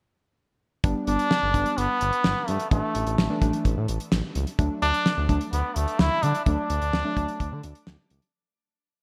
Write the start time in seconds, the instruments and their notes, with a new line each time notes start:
0.84 analog synth bass G1, synth pluck G3 B3 D4, kick, closed hi-hat
1.07 analog synth bass G1, synth pluck G3 B3 D4, trombone D4, closed hi-hat
1.19 closed hi-hat
1.31 snare
1.42 analog synth bass G1
1.54 analog synth bass G1, synth pluck G3 B3 D4, kick, closed hi-hat
1.66 closed hi-hat
1.78 analog synth bass G1, trombone B3, closed hi-hat
2.01 analog synth bass G1, closed hi-hat
2.13 closed hi-hat
2.24 analog synth bass G1, snare
2.48 analog synth bass G2, trombone A3, closed hi-hat
2.60 closed hi-hat
2.71 analog synth bass A1, synth pluck E3 A3 D4, trombone A3, kick, closed hi-hat
2.95 analog synth bass A1, closed hi-hat
3.06 analog synth bass A1, closed hi-hat
3.18 analog synth bass A1, snare
3.30 synth pluck E3 A3 D4
3.42 analog synth bass A1, synth pluck E3 A3 D4, kick, closed hi-hat
3.53 closed hi-hat
3.65 analog synth bass A1, kick, closed hi-hat
3.77 analog synth bass A2
3.88 analog synth bass A1, closed hi-hat
4.00 closed hi-hat
4.12 analog synth bass A1, snare
4.35 analog synth bass C#2, closed hi-hat
4.47 closed hi-hat
4.59 analog synth bass D2, synth pluck F#3 A3 D4, kick, closed hi-hat
4.82 analog synth bass D2, synth pluck F#3 A3 D4, trombone D4, closed hi-hat
4.94 closed hi-hat
5.06 snare
5.17 analog synth bass D2
5.29 analog synth bass D2, synth pluck F#3 A3 D4, kick, closed hi-hat
5.41 closed hi-hat
5.52 analog synth bass D2, trombone B3, closed hi-hat
5.76 analog synth bass D2, trombone A3, closed hi-hat
5.88 closed hi-hat
5.99 analog synth bass D2, trombone E4, snare
6.23 analog synth bass D3, trombone D4, closed hi-hat
6.35 closed hi-hat
6.46 analog synth bass D2, synth pluck F#3 A3 D4, trombone D4, kick, closed hi-hat
6.70 analog synth bass D2, closed hi-hat
6.81 analog synth bass D2, closed hi-hat
6.93 analog synth bass D2, snare
7.05 synth pluck F#3 A3 D4
7.17 analog synth bass D2, synth pluck F#3 A3 D4, kick, closed hi-hat
7.28 closed hi-hat
7.40 analog synth bass D2, kick, closed hi-hat
7.52 analog synth bass D3
7.63 analog synth bass D2, closed hi-hat
7.75 closed hi-hat
7.87 analog synth bass D2, snare
8.10 analog synth bass C#2, closed hi-hat
8.22 closed hi-hat